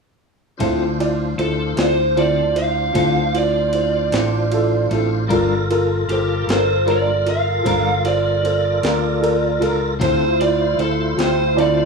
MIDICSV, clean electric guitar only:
0, 0, Header, 1, 2, 480
1, 0, Start_track
1, 0, Key_signature, -1, "minor"
1, 0, Tempo, 783290
1, 367, Time_signature, 12, 3, 24, 8
1, 7262, End_track
2, 0, Start_track
2, 0, Title_t, "Clean electric guitar"
2, 0, Program_c, 0, 27
2, 363, Note_on_c, 0, 50, 71
2, 366, Note_on_c, 0, 60, 77
2, 371, Note_on_c, 0, 65, 82
2, 371, Note_on_c, 0, 69, 76
2, 509, Note_off_c, 0, 50, 0
2, 511, Note_off_c, 0, 60, 0
2, 513, Note_off_c, 0, 65, 0
2, 513, Note_off_c, 0, 69, 0
2, 1081, Note_on_c, 0, 69, 39
2, 1084, Note_on_c, 0, 65, 37
2, 1093, Note_on_c, 0, 60, 35
2, 1229, Note_off_c, 0, 69, 0
2, 1230, Note_off_c, 0, 65, 0
2, 1235, Note_off_c, 0, 60, 0
2, 1326, Note_on_c, 0, 50, 53
2, 1329, Note_on_c, 0, 60, 57
2, 1329, Note_on_c, 0, 65, 55
2, 1337, Note_on_c, 0, 69, 56
2, 1471, Note_off_c, 0, 50, 0
2, 1473, Note_off_c, 0, 60, 0
2, 1473, Note_off_c, 0, 65, 0
2, 1477, Note_off_c, 0, 69, 0
2, 1799, Note_on_c, 0, 50, 68
2, 1804, Note_on_c, 0, 60, 67
2, 1807, Note_on_c, 0, 65, 73
2, 1812, Note_on_c, 0, 69, 72
2, 1948, Note_off_c, 0, 50, 0
2, 1950, Note_off_c, 0, 60, 0
2, 1952, Note_off_c, 0, 65, 0
2, 1954, Note_off_c, 0, 69, 0
2, 2525, Note_on_c, 0, 69, 51
2, 2530, Note_on_c, 0, 65, 44
2, 2541, Note_on_c, 0, 60, 38
2, 2671, Note_off_c, 0, 69, 0
2, 2674, Note_off_c, 0, 65, 0
2, 2679, Note_off_c, 0, 60, 0
2, 3001, Note_on_c, 0, 69, 49
2, 3007, Note_on_c, 0, 65, 52
2, 3010, Note_on_c, 0, 60, 39
2, 3149, Note_off_c, 0, 69, 0
2, 3152, Note_off_c, 0, 65, 0
2, 3154, Note_off_c, 0, 60, 0
2, 3237, Note_on_c, 0, 55, 71
2, 3243, Note_on_c, 0, 62, 77
2, 3243, Note_on_c, 0, 65, 86
2, 3247, Note_on_c, 0, 70, 85
2, 3387, Note_off_c, 0, 55, 0
2, 3390, Note_off_c, 0, 62, 0
2, 3390, Note_off_c, 0, 65, 0
2, 3392, Note_off_c, 0, 70, 0
2, 3964, Note_on_c, 0, 70, 45
2, 3970, Note_on_c, 0, 65, 41
2, 3979, Note_on_c, 0, 62, 44
2, 4111, Note_off_c, 0, 70, 0
2, 4114, Note_off_c, 0, 65, 0
2, 4118, Note_off_c, 0, 62, 0
2, 4200, Note_on_c, 0, 55, 50
2, 4205, Note_on_c, 0, 62, 52
2, 4209, Note_on_c, 0, 65, 57
2, 4216, Note_on_c, 0, 70, 55
2, 4349, Note_off_c, 0, 55, 0
2, 4351, Note_off_c, 0, 62, 0
2, 4353, Note_off_c, 0, 65, 0
2, 4357, Note_off_c, 0, 70, 0
2, 4689, Note_on_c, 0, 55, 65
2, 4695, Note_on_c, 0, 62, 66
2, 4701, Note_on_c, 0, 70, 77
2, 4702, Note_on_c, 0, 65, 76
2, 4833, Note_off_c, 0, 55, 0
2, 4836, Note_off_c, 0, 62, 0
2, 4840, Note_off_c, 0, 65, 0
2, 4840, Note_off_c, 0, 70, 0
2, 5412, Note_on_c, 0, 70, 52
2, 5419, Note_on_c, 0, 65, 39
2, 5424, Note_on_c, 0, 62, 44
2, 5554, Note_off_c, 0, 70, 0
2, 5558, Note_off_c, 0, 65, 0
2, 5560, Note_off_c, 0, 62, 0
2, 5890, Note_on_c, 0, 70, 56
2, 5900, Note_on_c, 0, 62, 47
2, 5900, Note_on_c, 0, 65, 47
2, 6033, Note_off_c, 0, 70, 0
2, 6038, Note_off_c, 0, 62, 0
2, 6038, Note_off_c, 0, 65, 0
2, 6122, Note_on_c, 0, 50, 71
2, 6126, Note_on_c, 0, 60, 68
2, 6127, Note_on_c, 0, 65, 69
2, 6135, Note_on_c, 0, 69, 75
2, 6269, Note_off_c, 0, 50, 0
2, 6271, Note_off_c, 0, 60, 0
2, 6272, Note_off_c, 0, 65, 0
2, 6276, Note_off_c, 0, 69, 0
2, 6849, Note_on_c, 0, 69, 47
2, 6857, Note_on_c, 0, 65, 49
2, 6866, Note_on_c, 0, 60, 38
2, 6992, Note_off_c, 0, 69, 0
2, 6996, Note_off_c, 0, 65, 0
2, 7001, Note_off_c, 0, 60, 0
2, 7092, Note_on_c, 0, 50, 54
2, 7102, Note_on_c, 0, 60, 51
2, 7105, Note_on_c, 0, 65, 62
2, 7108, Note_on_c, 0, 69, 66
2, 7234, Note_off_c, 0, 50, 0
2, 7238, Note_off_c, 0, 60, 0
2, 7240, Note_off_c, 0, 65, 0
2, 7242, Note_off_c, 0, 69, 0
2, 7262, End_track
0, 0, End_of_file